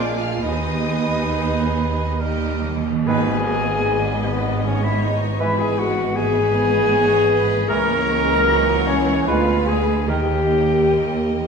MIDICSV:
0, 0, Header, 1, 14, 480
1, 0, Start_track
1, 0, Key_signature, 5, "minor"
1, 0, Tempo, 875912
1, 234, Time_signature, 3, 2, 24, 8
1, 1680, Tempo, 788436
1, 2640, Tempo, 763359
1, 5040, Tempo, 821918
1, 6798, End_track
2, 0, Start_track
2, 0, Title_t, "Flute"
2, 0, Program_c, 0, 73
2, 0, Note_on_c, 0, 74, 75
2, 114, Note_on_c, 0, 77, 81
2, 122, Note_off_c, 0, 74, 0
2, 232, Note_on_c, 0, 75, 84
2, 241, Note_off_c, 0, 77, 0
2, 1202, Note_off_c, 0, 75, 0
2, 1683, Note_on_c, 0, 80, 98
2, 2404, Note_on_c, 0, 71, 75
2, 2413, Note_off_c, 0, 80, 0
2, 2639, Note_off_c, 0, 71, 0
2, 2645, Note_on_c, 0, 73, 86
2, 2761, Note_on_c, 0, 76, 80
2, 2770, Note_off_c, 0, 73, 0
2, 2894, Note_on_c, 0, 75, 79
2, 2903, Note_off_c, 0, 76, 0
2, 3122, Note_on_c, 0, 76, 90
2, 3131, Note_off_c, 0, 75, 0
2, 3247, Note_on_c, 0, 80, 79
2, 3256, Note_off_c, 0, 76, 0
2, 3360, Note_on_c, 0, 78, 90
2, 3370, Note_off_c, 0, 80, 0
2, 3597, Note_on_c, 0, 80, 104
2, 3606, Note_off_c, 0, 78, 0
2, 4400, Note_off_c, 0, 80, 0
2, 4552, Note_on_c, 0, 82, 118
2, 5279, Note_on_c, 0, 73, 90
2, 5288, Note_off_c, 0, 82, 0
2, 5509, Note_on_c, 0, 77, 101
2, 5518, Note_off_c, 0, 73, 0
2, 5746, Note_on_c, 0, 80, 88
2, 5755, Note_off_c, 0, 77, 0
2, 5983, Note_off_c, 0, 80, 0
2, 5987, Note_on_c, 0, 79, 91
2, 6798, Note_off_c, 0, 79, 0
2, 6798, End_track
3, 0, Start_track
3, 0, Title_t, "Violin section"
3, 0, Program_c, 1, 48
3, 0, Note_on_c, 1, 86, 80
3, 111, Note_on_c, 1, 89, 90
3, 112, Note_off_c, 1, 86, 0
3, 225, Note_on_c, 1, 87, 94
3, 232, Note_off_c, 1, 89, 0
3, 1199, Note_off_c, 1, 87, 0
3, 1681, Note_on_c, 1, 75, 73
3, 3096, Note_off_c, 1, 75, 0
3, 3125, Note_on_c, 1, 76, 70
3, 3588, Note_off_c, 1, 76, 0
3, 3599, Note_on_c, 1, 76, 69
3, 3829, Note_on_c, 1, 75, 69
3, 3832, Note_off_c, 1, 76, 0
3, 4549, Note_off_c, 1, 75, 0
3, 4549, Note_on_c, 1, 73, 83
3, 5038, Note_off_c, 1, 73, 0
3, 5040, Note_on_c, 1, 78, 82
3, 5508, Note_on_c, 1, 77, 73
3, 5512, Note_off_c, 1, 78, 0
3, 5983, Note_on_c, 1, 75, 71
3, 5984, Note_off_c, 1, 77, 0
3, 6798, Note_off_c, 1, 75, 0
3, 6798, End_track
4, 0, Start_track
4, 0, Title_t, "Cor anglais"
4, 0, Program_c, 2, 69
4, 234, Note_on_c, 2, 71, 67
4, 1208, Note_on_c, 2, 70, 60
4, 1216, Note_off_c, 2, 71, 0
4, 1496, Note_off_c, 2, 70, 0
4, 1684, Note_on_c, 2, 71, 69
4, 1861, Note_off_c, 2, 71, 0
4, 3116, Note_on_c, 2, 71, 68
4, 3288, Note_off_c, 2, 71, 0
4, 4558, Note_on_c, 2, 70, 85
4, 4730, Note_off_c, 2, 70, 0
4, 5515, Note_on_c, 2, 71, 86
4, 5687, Note_off_c, 2, 71, 0
4, 5992, Note_on_c, 2, 70, 64
4, 6167, Note_off_c, 2, 70, 0
4, 6798, End_track
5, 0, Start_track
5, 0, Title_t, "Violin section"
5, 0, Program_c, 3, 48
5, 0, Note_on_c, 3, 68, 91
5, 0, Note_on_c, 3, 74, 86
5, 212, Note_off_c, 3, 68, 0
5, 212, Note_off_c, 3, 74, 0
5, 232, Note_on_c, 3, 75, 68
5, 233, Note_on_c, 3, 68, 72
5, 1183, Note_off_c, 3, 68, 0
5, 1183, Note_off_c, 3, 75, 0
5, 1206, Note_on_c, 3, 75, 63
5, 1209, Note_on_c, 3, 67, 69
5, 1559, Note_off_c, 3, 75, 0
5, 1568, Note_off_c, 3, 67, 0
5, 1682, Note_on_c, 3, 71, 80
5, 1909, Note_off_c, 3, 71, 0
5, 1922, Note_on_c, 3, 70, 69
5, 2160, Note_off_c, 3, 70, 0
5, 2164, Note_on_c, 3, 71, 69
5, 2638, Note_off_c, 3, 71, 0
5, 2642, Note_on_c, 3, 73, 69
5, 3121, Note_off_c, 3, 73, 0
5, 3121, Note_on_c, 3, 71, 73
5, 3579, Note_off_c, 3, 71, 0
5, 3586, Note_on_c, 3, 71, 76
5, 4059, Note_off_c, 3, 71, 0
5, 4070, Note_on_c, 3, 73, 87
5, 4310, Note_off_c, 3, 73, 0
5, 4316, Note_on_c, 3, 71, 86
5, 4550, Note_off_c, 3, 71, 0
5, 4556, Note_on_c, 3, 73, 83
5, 5032, Note_off_c, 3, 73, 0
5, 5047, Note_on_c, 3, 73, 87
5, 5506, Note_off_c, 3, 73, 0
5, 5518, Note_on_c, 3, 71, 82
5, 5988, Note_on_c, 3, 70, 67
5, 5989, Note_off_c, 3, 71, 0
5, 6798, Note_off_c, 3, 70, 0
5, 6798, End_track
6, 0, Start_track
6, 0, Title_t, "French horn section"
6, 0, Program_c, 4, 60
6, 7, Note_on_c, 4, 62, 69
6, 119, Note_off_c, 4, 62, 0
6, 119, Note_on_c, 4, 65, 72
6, 234, Note_off_c, 4, 65, 0
6, 244, Note_on_c, 4, 63, 82
6, 1208, Note_off_c, 4, 63, 0
6, 1674, Note_on_c, 4, 68, 102
6, 2376, Note_off_c, 4, 68, 0
6, 2409, Note_on_c, 4, 59, 83
6, 2642, Note_off_c, 4, 59, 0
6, 2644, Note_on_c, 4, 61, 84
6, 2755, Note_on_c, 4, 64, 83
6, 2763, Note_off_c, 4, 61, 0
6, 2878, Note_off_c, 4, 64, 0
6, 2887, Note_on_c, 4, 63, 94
6, 3116, Note_on_c, 4, 64, 100
6, 3123, Note_off_c, 4, 63, 0
6, 3234, Note_off_c, 4, 64, 0
6, 3239, Note_on_c, 4, 68, 97
6, 3357, Note_off_c, 4, 68, 0
6, 3357, Note_on_c, 4, 66, 105
6, 3593, Note_on_c, 4, 68, 121
6, 3595, Note_off_c, 4, 66, 0
6, 4542, Note_on_c, 4, 70, 126
6, 4551, Note_off_c, 4, 68, 0
6, 5172, Note_off_c, 4, 70, 0
6, 5271, Note_on_c, 4, 61, 104
6, 5506, Note_off_c, 4, 61, 0
6, 5516, Note_on_c, 4, 65, 109
6, 5744, Note_on_c, 4, 68, 100
6, 5751, Note_off_c, 4, 65, 0
6, 5984, Note_off_c, 4, 68, 0
6, 5985, Note_on_c, 4, 67, 95
6, 6798, Note_off_c, 4, 67, 0
6, 6798, End_track
7, 0, Start_track
7, 0, Title_t, "Clarinet"
7, 0, Program_c, 5, 71
7, 0, Note_on_c, 5, 62, 78
7, 213, Note_off_c, 5, 62, 0
7, 230, Note_on_c, 5, 63, 62
7, 1470, Note_off_c, 5, 63, 0
7, 1679, Note_on_c, 5, 68, 103
7, 2404, Note_on_c, 5, 59, 80
7, 2413, Note_off_c, 5, 68, 0
7, 2631, Note_on_c, 5, 61, 75
7, 2640, Note_off_c, 5, 59, 0
7, 2758, Note_on_c, 5, 64, 76
7, 2768, Note_off_c, 5, 61, 0
7, 2878, Note_on_c, 5, 63, 73
7, 2888, Note_off_c, 5, 64, 0
7, 3113, Note_off_c, 5, 63, 0
7, 3117, Note_on_c, 5, 64, 86
7, 3230, Note_on_c, 5, 68, 86
7, 3240, Note_off_c, 5, 64, 0
7, 3357, Note_on_c, 5, 66, 82
7, 3366, Note_off_c, 5, 68, 0
7, 3592, Note_on_c, 5, 68, 102
7, 3601, Note_off_c, 5, 66, 0
7, 4553, Note_on_c, 5, 70, 114
7, 4562, Note_off_c, 5, 68, 0
7, 5274, Note_off_c, 5, 70, 0
7, 5280, Note_on_c, 5, 61, 88
7, 5514, Note_on_c, 5, 65, 93
7, 5522, Note_off_c, 5, 61, 0
7, 5755, Note_on_c, 5, 68, 81
7, 5764, Note_off_c, 5, 65, 0
7, 5984, Note_off_c, 5, 68, 0
7, 5987, Note_on_c, 5, 67, 83
7, 6798, Note_off_c, 5, 67, 0
7, 6798, End_track
8, 0, Start_track
8, 0, Title_t, "Viola section"
8, 0, Program_c, 6, 48
8, 0, Note_on_c, 6, 58, 82
8, 0, Note_on_c, 6, 65, 91
8, 209, Note_off_c, 6, 65, 0
8, 211, Note_off_c, 6, 58, 0
8, 236, Note_on_c, 6, 59, 68
8, 236, Note_on_c, 6, 63, 72
8, 1185, Note_off_c, 6, 63, 0
8, 1202, Note_on_c, 6, 58, 69
8, 1203, Note_on_c, 6, 63, 65
8, 1205, Note_off_c, 6, 59, 0
8, 1558, Note_off_c, 6, 63, 0
8, 1564, Note_off_c, 6, 58, 0
8, 1680, Note_on_c, 6, 59, 66
8, 2142, Note_off_c, 6, 59, 0
8, 2166, Note_on_c, 6, 56, 69
8, 3107, Note_off_c, 6, 56, 0
8, 3115, Note_on_c, 6, 56, 70
8, 3583, Note_off_c, 6, 56, 0
8, 3585, Note_on_c, 6, 59, 81
8, 4544, Note_on_c, 6, 58, 90
8, 4547, Note_off_c, 6, 59, 0
8, 4785, Note_off_c, 6, 58, 0
8, 4796, Note_on_c, 6, 56, 99
8, 5041, Note_off_c, 6, 56, 0
8, 5044, Note_on_c, 6, 54, 89
8, 5273, Note_on_c, 6, 52, 88
8, 5276, Note_off_c, 6, 54, 0
8, 5512, Note_off_c, 6, 52, 0
8, 5513, Note_on_c, 6, 56, 74
8, 5982, Note_on_c, 6, 58, 69
8, 5986, Note_off_c, 6, 56, 0
8, 6798, Note_off_c, 6, 58, 0
8, 6798, End_track
9, 0, Start_track
9, 0, Title_t, "Trombone section"
9, 0, Program_c, 7, 61
9, 1678, Note_on_c, 7, 51, 69
9, 1678, Note_on_c, 7, 59, 76
9, 3094, Note_off_c, 7, 51, 0
9, 3094, Note_off_c, 7, 59, 0
9, 3123, Note_on_c, 7, 59, 68
9, 3125, Note_on_c, 7, 52, 72
9, 3585, Note_off_c, 7, 59, 0
9, 3587, Note_off_c, 7, 52, 0
9, 3592, Note_on_c, 7, 59, 83
9, 3594, Note_on_c, 7, 52, 81
9, 4532, Note_off_c, 7, 59, 0
9, 4533, Note_off_c, 7, 52, 0
9, 4556, Note_on_c, 7, 52, 93
9, 4558, Note_on_c, 7, 58, 91
9, 5495, Note_off_c, 7, 52, 0
9, 5496, Note_off_c, 7, 58, 0
9, 5520, Note_on_c, 7, 59, 79
9, 5521, Note_on_c, 7, 50, 81
9, 5887, Note_off_c, 7, 50, 0
9, 5887, Note_off_c, 7, 59, 0
9, 5986, Note_on_c, 7, 51, 71
9, 5990, Note_on_c, 7, 58, 69
9, 6798, Note_off_c, 7, 51, 0
9, 6798, Note_off_c, 7, 58, 0
9, 6798, End_track
10, 0, Start_track
10, 0, Title_t, "Bassoon"
10, 0, Program_c, 8, 70
10, 0, Note_on_c, 8, 56, 97
10, 1014, Note_off_c, 8, 56, 0
10, 1207, Note_on_c, 8, 55, 59
10, 1476, Note_off_c, 8, 55, 0
10, 1687, Note_on_c, 8, 51, 79
10, 1863, Note_off_c, 8, 51, 0
10, 3117, Note_on_c, 8, 52, 76
10, 3288, Note_off_c, 8, 52, 0
10, 4559, Note_on_c, 8, 52, 86
10, 4731, Note_off_c, 8, 52, 0
10, 5517, Note_on_c, 8, 56, 72
10, 5688, Note_off_c, 8, 56, 0
10, 5986, Note_on_c, 8, 51, 74
10, 6164, Note_off_c, 8, 51, 0
10, 6798, End_track
11, 0, Start_track
11, 0, Title_t, "Timpani"
11, 0, Program_c, 10, 47
11, 1207, Note_on_c, 10, 51, 41
11, 1243, Note_off_c, 10, 51, 0
11, 1250, Note_on_c, 10, 51, 41
11, 1292, Note_off_c, 10, 51, 0
11, 1297, Note_on_c, 10, 51, 48
11, 1335, Note_off_c, 10, 51, 0
11, 1342, Note_on_c, 10, 51, 48
11, 1383, Note_off_c, 10, 51, 0
11, 1389, Note_on_c, 10, 51, 53
11, 1428, Note_off_c, 10, 51, 0
11, 1435, Note_on_c, 10, 51, 60
11, 1468, Note_off_c, 10, 51, 0
11, 1474, Note_on_c, 10, 51, 76
11, 1512, Note_off_c, 10, 51, 0
11, 1519, Note_on_c, 10, 51, 76
11, 1555, Note_off_c, 10, 51, 0
11, 1561, Note_on_c, 10, 51, 90
11, 1596, Note_off_c, 10, 51, 0
11, 1603, Note_on_c, 10, 51, 97
11, 1645, Note_off_c, 10, 51, 0
11, 1678, Note_on_c, 10, 44, 97
11, 2378, Note_off_c, 10, 44, 0
11, 5981, Note_on_c, 10, 51, 82
11, 6693, Note_off_c, 10, 51, 0
11, 6798, End_track
12, 0, Start_track
12, 0, Title_t, "Cello section"
12, 0, Program_c, 11, 48
12, 0, Note_on_c, 11, 46, 79
12, 212, Note_off_c, 11, 46, 0
12, 234, Note_on_c, 11, 39, 67
12, 1543, Note_off_c, 11, 39, 0
12, 1683, Note_on_c, 11, 44, 73
12, 3097, Note_off_c, 11, 44, 0
12, 3116, Note_on_c, 11, 44, 70
12, 4525, Note_off_c, 11, 44, 0
12, 4553, Note_on_c, 11, 37, 90
12, 5494, Note_off_c, 11, 37, 0
12, 5514, Note_on_c, 11, 38, 81
12, 5977, Note_off_c, 11, 38, 0
12, 5986, Note_on_c, 11, 39, 69
12, 6424, Note_off_c, 11, 39, 0
12, 6476, Note_on_c, 11, 39, 59
12, 6703, Note_off_c, 11, 39, 0
12, 6718, Note_on_c, 11, 40, 54
12, 6798, Note_off_c, 11, 40, 0
12, 6798, End_track
13, 0, Start_track
13, 0, Title_t, "Double bass section"
13, 0, Program_c, 12, 48
13, 0, Note_on_c, 12, 34, 85
13, 211, Note_off_c, 12, 34, 0
13, 237, Note_on_c, 12, 39, 73
13, 1545, Note_off_c, 12, 39, 0
13, 1681, Note_on_c, 12, 32, 80
13, 3096, Note_off_c, 12, 32, 0
13, 3122, Note_on_c, 12, 32, 74
13, 4528, Note_off_c, 12, 32, 0
13, 4553, Note_on_c, 12, 37, 90
13, 5494, Note_off_c, 12, 37, 0
13, 5510, Note_on_c, 12, 38, 75
13, 5976, Note_off_c, 12, 38, 0
13, 5986, Note_on_c, 12, 39, 73
13, 6798, Note_off_c, 12, 39, 0
13, 6798, End_track
14, 0, Start_track
14, 0, Title_t, "Tam-tam"
14, 1681, Note_on_c, 9, 52, 56
14, 1742, Note_off_c, 9, 52, 0
14, 6798, End_track
0, 0, End_of_file